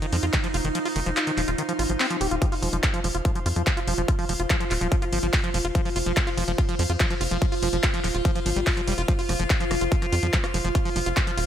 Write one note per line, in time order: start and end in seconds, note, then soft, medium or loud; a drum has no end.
0.00 0.06 D#3 medium
0.00 2.42 D#4 medium
0.00 11.46 F4 medium
0.00 11.46 C5 medium
0.00 11.46 F5 medium
0.00 closed hi-hat soft
0.12 0.20 F2 loud
0.12 0.17 F3 medium
0.12 open hi-hat loud
0.23 0.30 F2 medium
0.23 0.25 F4 medium
0.23 closed hi-hat medium
0.33 0.38 D#3 medium
0.33 kick loud
0.33 clap loud
0.33 closed hi-hat medium
0.44 0.48 F3 medium
0.44 closed hi-hat medium
0.54 0.61 F1 medium
0.54 0.57 F4 medium
0.54 open hi-hat loud
0.65 0.72 F1 medium
0.65 0.69 D#3 medium
0.65 closed hi-hat medium
0.75 0.79 F3 medium
0.75 closed hi-hat medium
0.85 0.88 F4 medium
0.85 open hi-hat medium
0.96 1.03 F1 loud
0.96 1.00 D#3 medium
0.96 open hi-hat loud
1.06 1.14 F1 medium
1.06 1.10 F3 medium
1.06 closed hi-hat medium
1.17 1.19 F4 medium
1.17 clap loud
1.17 closed hi-hat medium
1.27 1.31 D#3 medium
1.27 closed hi-hat medium
1.37 1.45 D#1 medium
1.37 1.42 F3 medium
1.37 clap soft
1.37 open hi-hat loud
1.48 1.55 D#1 medium
1.48 1.50 F4 medium
1.48 closed hi-hat medium
1.58 1.63 D#3 medium
1.58 closed hi-hat medium
1.69 1.73 F3 medium
1.69 closed hi-hat medium
1.79 1.86 G#1 loud
1.79 1.83 F4 medium
1.79 open hi-hat loud
1.90 1.97 G#1 medium
1.90 1.92 F3 medium
1.90 closed hi-hat medium
2.00 2.06 C4 medium
2.00 clap loud
2.00 open hi-hat medium
2.10 2.17 F3 medium
2.10 closed hi-hat medium
2.21 2.28 D#1 medium
2.21 2.27 G4 medium
2.21 open hi-hat loud
2.31 2.39 D#1 medium
2.31 2.35 F4 medium
2.31 closed hi-hat medium
2.42 2.46 F3 medium
2.42 11.46 F4 medium
2.42 kick loud
2.42 closed hi-hat medium
2.52 2.55 F4 medium
2.52 open hi-hat medium
2.62 2.70 F1 medium
2.62 2.69 F3 medium
2.62 open hi-hat loud
2.73 2.80 F1 medium
2.73 2.77 F3 medium
2.73 closed hi-hat medium
2.83 2.86 F4 medium
2.83 kick loud
2.83 clap loud
2.83 closed hi-hat medium
2.94 3.00 F3 medium
2.94 closed hi-hat medium
3.04 3.11 F1 medium
3.04 3.08 F3 medium
3.04 open hi-hat loud
3.15 3.22 F1 medium
3.15 3.17 F4 medium
3.15 closed hi-hat medium
3.25 3.31 F3 medium
3.25 kick loud
3.25 closed hi-hat medium
3.35 3.40 F3 medium
3.35 closed hi-hat medium
3.46 3.53 F2 loud
3.46 3.48 F4 medium
3.46 open hi-hat loud
3.56 3.64 F2 medium
3.56 3.63 F3 medium
3.56 closed hi-hat medium
3.67 3.71 F3 medium
3.67 kick loud
3.67 clap loud
3.67 closed hi-hat medium
3.77 3.80 F4 medium
3.77 closed hi-hat medium
3.87 3.95 F1 medium
3.87 3.94 F3 medium
3.87 open hi-hat loud
3.98 4.05 F1 medium
3.98 4.02 F3 medium
3.98 closed hi-hat medium
4.08 4.11 F4 medium
4.08 kick loud
4.08 closed hi-hat medium
4.19 4.25 F3 medium
4.19 open hi-hat medium
4.29 4.36 F1 loud
4.29 4.33 F3 medium
4.29 open hi-hat loud
4.40 4.47 F1 medium
4.40 4.42 F4 medium
4.40 closed hi-hat medium
4.50 4.56 F3 medium
4.50 kick loud
4.50 clap loud
4.50 closed hi-hat medium
4.60 4.65 F3 medium
4.60 closed hi-hat medium
4.71 4.78 D#1 medium
4.71 4.73 F4 medium
4.71 clap soft
4.71 open hi-hat loud
4.81 4.89 D#1 medium
4.81 4.88 F3 medium
4.81 closed hi-hat medium
4.92 4.96 F3 medium
4.92 kick loud
4.92 closed hi-hat medium
5.02 5.05 F4 medium
5.02 closed hi-hat soft
5.12 5.20 G#1 medium
5.12 5.19 F3 medium
5.12 open hi-hat loud
5.23 5.30 G#1 medium
5.23 5.27 F3 medium
5.23 closed hi-hat medium
5.33 5.36 F4 medium
5.33 kick loud
5.33 clap loud
5.33 open hi-hat medium
5.44 5.50 F3 medium
5.44 closed hi-hat medium
5.54 5.61 F1 medium
5.54 5.58 F3 medium
5.54 open hi-hat loud
5.65 5.72 F1 medium
5.65 5.67 F4 medium
5.65 closed hi-hat medium
5.75 5.81 F3 medium
5.75 kick loud
5.75 closed hi-hat medium
5.85 5.90 F3 medium
5.85 open hi-hat medium
5.96 6.03 F1 medium
5.96 5.98 F4 medium
5.96 open hi-hat loud
6.06 6.14 F1 medium
6.06 6.13 F3 medium
6.06 closed hi-hat soft
6.17 6.21 F3 medium
6.17 kick loud
6.17 clap loud
6.17 closed hi-hat medium
6.27 6.30 F4 medium
6.27 closed hi-hat soft
6.37 6.45 F1 medium
6.37 6.44 F3 medium
6.37 open hi-hat loud
6.48 6.55 F1 medium
6.48 6.52 F3 medium
6.48 closed hi-hat medium
6.58 6.61 F4 medium
6.58 kick loud
6.58 closed hi-hat medium
6.69 6.75 F3 medium
6.69 closed hi-hat soft
6.79 6.86 F2 medium
6.79 6.83 F3 medium
6.79 open hi-hat loud
6.90 6.97 F2 medium
6.90 6.92 F4 medium
6.90 closed hi-hat soft
7.00 7.06 F3 medium
7.00 kick loud
7.00 clap loud
7.00 closed hi-hat medium
7.10 7.15 F3 medium
7.10 closed hi-hat medium
7.21 7.28 F1 medium
7.21 7.23 F4 medium
7.21 open hi-hat loud
7.31 7.39 F1 medium
7.31 7.38 F3 medium
7.31 closed hi-hat medium
7.42 7.46 F3 medium
7.42 kick loud
7.42 closed hi-hat medium
7.52 7.55 F4 medium
7.52 open hi-hat medium
7.62 7.70 F1 loud
7.62 7.69 F3 medium
7.62 open hi-hat loud
7.73 7.80 F1 medium
7.73 7.77 F3 medium
7.73 closed hi-hat medium
7.83 7.86 F4 medium
7.83 kick loud
7.83 clap loud
7.83 closed hi-hat medium
7.94 8.00 F3 medium
7.94 closed hi-hat medium
8.04 8.11 D#1 medium
8.04 8.08 F3 medium
8.04 clap soft
8.04 open hi-hat loud
8.15 8.22 D#1 medium
8.15 8.17 F4 medium
8.15 closed hi-hat medium
8.25 8.31 F3 medium
8.25 kick loud
8.25 closed hi-hat medium
8.35 8.40 F3 medium
8.35 closed hi-hat soft
8.46 8.53 G#1 loud
8.46 8.50 F3 medium
8.46 open hi-hat loud
8.56 8.64 G#1 medium
8.56 8.60 G3 medium
8.56 closed hi-hat medium
8.67 8.71 F4 medium
8.67 kick loud
8.67 clap loud
8.67 open hi-hat medium
8.77 8.81 F3 medium
8.77 closed hi-hat soft
8.87 8.95 F1 medium
8.87 8.94 G3 medium
8.87 open hi-hat loud
8.98 9.05 F1 medium
8.98 9.02 F4 medium
8.98 closed hi-hat medium
9.08 9.13 F3 medium
9.08 kick loud
9.08 closed hi-hat medium
9.19 9.21 F4 medium
9.19 open hi-hat medium
9.29 9.36 F1 loud
9.29 9.33 F3 medium
9.29 cross-stick soft
9.29 open hi-hat loud
9.40 9.47 F1 medium
9.40 9.44 F3 medium
9.40 closed hi-hat soft
9.50 9.53 F4 medium
9.50 kick loud
9.50 clap loud
9.50 closed hi-hat medium
9.60 9.65 F3 medium
9.60 closed hi-hat medium
9.71 9.78 F1 loud
9.71 9.75 F3 medium
9.71 cross-stick medium
9.71 open hi-hat loud
9.81 9.89 F1 medium
9.81 9.84 F4 medium
9.81 closed hi-hat medium
9.92 9.96 F3 medium
9.92 kick loud
9.92 closed hi-hat medium
10.02 10.06 F3 medium
10.02 cross-stick soft
10.02 closed hi-hat soft
10.12 10.20 F2 medium
10.12 10.15 F4 medium
10.12 open hi-hat loud
10.23 10.30 F2 medium
10.23 10.27 F3 medium
10.23 closed hi-hat medium
10.33 10.38 F3 medium
10.33 kick loud
10.33 clap loud
10.33 closed hi-hat medium
10.44 10.46 F4 medium
10.44 cross-stick medium
10.44 closed hi-hat soft
10.54 10.61 F1 medium
10.54 10.58 F3 medium
10.54 open hi-hat loud
10.65 10.72 F1 medium
10.65 10.69 F3 medium
10.65 closed hi-hat soft
10.75 10.78 F4 medium
10.75 kick loud
10.75 cross-stick soft
10.75 closed hi-hat medium
10.85 10.90 F3 medium
10.85 open hi-hat medium
10.96 11.03 F1 medium
10.96 11.00 F3 medium
10.96 open hi-hat loud
11.06 11.14 F1 medium
11.06 11.09 F4 medium
11.06 closed hi-hat medium
11.17 11.21 F3 medium
11.17 kick loud
11.17 cross-stick medium
11.17 clap loud
11.17 closed hi-hat medium
11.27 11.31 F3 medium
11.27 closed hi-hat medium
11.37 11.45 D#1 medium
11.37 11.40 F4 medium
11.37 open hi-hat loud